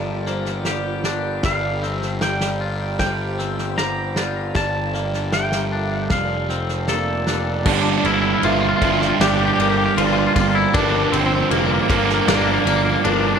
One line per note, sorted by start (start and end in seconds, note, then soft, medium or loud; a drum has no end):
0.00 1.40 G1 medium
0.00 1.82 G2 medium
0.00 1.44 F3 medium
0.00 4.52 G3 medium
0.00 0.26 A#3 soft
0.00 1.04 D4 medium
0.00 1.40 F4 medium
0.00 1.41 A4 medium
0.00 1.41 A#4 medium
0.00 0.27 D5 medium
0.00 1.01 D5 medium
0.00 7.62 G5 medium
0.26 1.44 A#3 medium
0.26 0.66 C5 medium
0.26 snare soft
0.46 snare soft
0.65 2.64 G4 medium
0.65 1.43 D5 medium
0.65 snare medium
1.04 1.44 D4 medium
1.04 snare medium
1.43 4.52 G1 medium
1.43 2.21 G3 medium
1.43 4.53 G4 medium
1.43 4.53 C5 medium
1.43 1.83 D5 medium
1.43 4.52 F5 medium
1.43 1.96 F5 medium
1.43 kick medium
1.43 snare medium
1.83 3.37 C4 soft
1.83 2.22 C5 medium
1.83 snare soft
1.96 2.19 E5 medium
2.02 snare soft
2.21 2.99 G3 medium
2.21 3.00 D5 medium
2.21 2.96 G5 medium
2.21 snare medium
2.41 snare medium
2.61 4.16 F4 medium
2.99 4.56 G3 medium
2.99 3.76 C5 medium
2.99 3.77 G5 medium
2.99 kick medium
2.99 snare medium
3.39 4.56 C4 medium
3.39 snare soft
3.58 snare soft
3.77 4.56 G4 medium
3.77 4.17 C5 medium
3.77 4.56 A#5 medium
3.77 snare medium
4.16 4.58 F4 medium
4.16 4.53 D5 medium
4.16 snare medium
4.54 6.08 G1 medium
4.54 6.11 G2 medium
4.54 6.09 G3 medium
4.54 7.62 F4 medium
4.54 7.62 A4 medium
4.54 6.09 A#4 medium
4.54 5.33 D5 medium
4.54 5.30 A5 medium
4.54 kick medium
4.54 snare medium
4.94 6.11 A#3 medium
4.94 snare soft
5.14 snare soft
5.32 6.10 F3 medium
5.32 6.11 E5 medium
5.32 6.11 G5 medium
5.32 snare medium
5.52 snare medium
5.72 6.11 D4 medium
6.10 7.66 F1 medium
6.10 7.66 F3 medium
6.10 7.64 F3 medium
6.10 6.49 D5 medium
6.10 7.64 D5 medium
6.10 6.85 F5 medium
6.10 kick medium
6.10 snare medium
6.49 7.66 C4 medium
6.49 6.88 C5 medium
6.49 snare soft
6.69 snare soft
6.88 7.68 A#3 medium
6.88 7.66 A4 medium
6.88 7.65 D5 medium
6.88 snare medium
7.27 7.66 D4 medium
7.27 snare medium
7.66 7.95 G1 medium
7.66 9.59 G2 medium
7.66 8.79 G2 medium
7.66 8.80 D3 medium
7.66 13.39 F3 medium
7.66 8.80 G3 loud
7.66 8.82 A#3 loud
7.66 7.74 D4 medium
7.66 8.81 D4 loud
7.66 13.39 A#4 medium
7.66 13.39 D5 medium
7.66 10.71 G5 medium
7.66 kick loud
7.66 crash loud
7.75 7.81 D4 medium
7.82 7.90 D4 medium
7.91 7.97 D4 medium
7.98 8.06 D4 medium
8.04 8.34 G1 medium
8.04 9.97 D3 medium
8.04 8.13 E4 medium
8.04 8.43 F6 medium
8.04 ride medium
8.13 8.20 E4 medium
8.21 8.26 E4 medium
8.27 8.33 E4 medium
8.34 8.41 E4 medium
8.42 8.72 G1 medium
8.42 9.58 A#3 medium
8.42 8.52 F4 medium
8.42 9.20 E5 medium
8.42 ride loud
8.52 8.60 F4 medium
8.61 8.68 F4 medium
8.69 8.76 F4 medium
8.77 8.84 F4 medium
8.81 9.11 G1 medium
8.81 10.72 G2 medium
8.81 10.73 D3 medium
8.81 9.97 F3 medium
8.81 10.72 G3 medium
8.81 10.72 A#3 medium
8.81 10.71 D4 medium
8.81 8.92 F4 medium
8.81 kick medium
8.81 ride medium
8.93 8.99 F4 medium
9.00 9.07 F4 medium
9.00 snare soft
9.08 9.16 F4 medium
9.20 9.49 G1 medium
9.20 10.74 D4 medium
9.20 9.29 G4 loud
9.20 9.59 D5 medium
9.20 snare loud
9.20 ride loud
9.29 9.37 G4 medium
9.37 9.45 G4 medium
9.45 9.53 G4 medium
9.53 9.61 G4 medium
9.58 9.88 G1 medium
9.58 10.35 A#3 medium
9.58 9.69 G4 medium
9.58 9.97 A#4 medium
9.58 ride medium
9.70 9.77 G4 medium
9.78 9.85 G4 medium
9.86 9.94 G4 medium
9.97 10.26 G1 medium
9.97 10.78 F3 medium
9.97 10.05 F4 medium
9.97 10.74 D5 medium
9.97 ride loud
10.05 10.12 F4 medium
10.13 10.18 F4 medium
10.19 10.26 F4 medium
10.27 10.34 F4 medium
10.35 10.65 G1 medium
10.35 10.74 A#3 medium
10.35 10.40 F4 medium
10.35 kick medium
10.35 ride medium
10.41 10.48 F4 medium
10.50 10.57 F4 medium
10.55 10.75 E4 loud
10.74 11.03 G1 loud
10.74 11.87 G2 medium
10.74 12.66 G2 medium
10.74 11.87 D3 medium
10.74 11.90 F3 loud
10.74 11.88 A#3 loud
10.74 10.82 D4 loud
10.74 11.88 D4 loud
10.74 11.12 A#4 loud
10.74 13.39 A#5 medium
10.74 kick loud
10.74 ride loud
10.83 10.89 D4 medium
10.89 10.97 D4 medium
10.98 11.05 D4 medium
11.05 11.12 D4 medium
11.12 11.42 G1 medium
11.12 13.04 D3 medium
11.12 11.19 C4 medium
11.12 11.89 C5 medium
11.12 ride medium
11.19 11.25 C4 medium
11.26 11.33 C4 medium
11.35 11.41 C4 medium
11.41 11.48 C4 medium
11.51 11.80 F1 medium
11.51 11.58 A#3 medium
11.51 12.65 A#3 medium
11.51 ride loud
11.58 11.66 A#3 medium
11.66 11.73 A#3 medium
11.74 11.81 A#3 medium
11.82 11.90 A#3 medium
11.89 12.19 G1 loud
11.89 13.39 G2 medium
11.89 13.39 D3 medium
11.89 13.03 F3 medium
11.89 13.39 F3 medium
11.89 13.39 A#3 medium
11.89 11.97 A#3 medium
11.89 13.39 D4 medium
11.89 12.28 A#4 medium
11.89 kick loud
11.89 ride medium
11.97 12.05 A#3 medium
12.05 12.13 A#3 medium
12.09 snare soft
12.14 12.21 A#3 medium
12.21 12.28 A#3 medium
12.28 12.57 G1 loud
12.28 12.36 A#3 medium
12.28 13.39 D4 medium
12.28 13.04 D5 medium
12.28 snare loud
12.28 ride loud
12.37 12.44 A#3 medium
12.44 12.52 A#3 medium
12.53 12.60 A#3 medium
12.61 12.68 A#3 medium
12.65 12.95 G1 medium
12.65 13.39 A#3 medium
12.65 12.76 A#3 medium
12.65 ride medium
12.76 12.84 A#3 medium
12.85 12.92 A#3 medium
12.92 13.00 A#3 medium
13.04 13.34 G1 medium
13.04 13.39 F3 medium
13.04 13.11 D4 medium
13.04 13.39 A#4 medium
13.04 ride loud
13.12 13.20 D4 medium
13.21 13.27 D4 medium
13.28 13.35 D4 medium
13.35 13.39 D4 medium